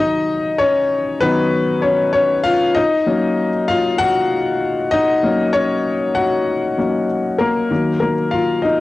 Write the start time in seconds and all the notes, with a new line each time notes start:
Already playing: D#3 F#3 F4 D#5 F5
0.00 D#4
0.58 C#4 C#5
1.21 D#3 F#3 B3 D#4 B4
1.82 C#4 C#5
2.13 C#4 C#5
2.44 F4 F5
2.75 D#4 D#5
3.06 F#3 A#3 C#4
3.68 F4 F5
3.98 F#4 F#5
4.91 D#4 D#5
5.23 F#3 A#3 C#4
5.53 C#4 C#5
6.15 F#4 F#5
6.78 F#3 A#3 C#4
7.38 A#3 A#4
7.71 D#3 F#3 A#3
8.00 A#3 A#4
8.31 F4 F5
8.62 D#4 D#5